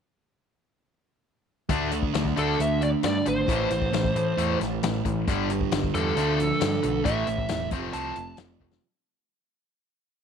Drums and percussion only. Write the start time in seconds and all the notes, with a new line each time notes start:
1.69 kick, closed hi-hat
1.91 closed hi-hat
2.03 kick
2.14 snare, closed hi-hat
2.25 kick
2.37 closed hi-hat
2.60 closed hi-hat
2.82 closed hi-hat
3.03 snare, closed hi-hat
3.26 closed hi-hat
3.48 kick, closed hi-hat
3.70 closed hi-hat
3.82 kick
3.93 snare, closed hi-hat
4.04 kick
4.16 closed hi-hat
4.38 closed hi-hat
4.61 snare, closed hi-hat
4.83 snare, closed hi-hat
5.05 kick, closed hi-hat
5.27 kick, closed hi-hat
5.50 closed hi-hat
5.61 kick
5.71 snare, closed hi-hat
5.83 kick
5.95 closed hi-hat
6.17 closed hi-hat
6.40 closed hi-hat
6.61 snare, closed hi-hat
6.83 closed hi-hat
7.05 kick, closed hi-hat
7.27 closed hi-hat
7.38 kick
7.49 snare, closed hi-hat
7.71 kick, closed hi-hat
7.93 closed hi-hat
8.16 closed hi-hat
8.37 snare, closed hi-hat
8.60 kick
8.71 snare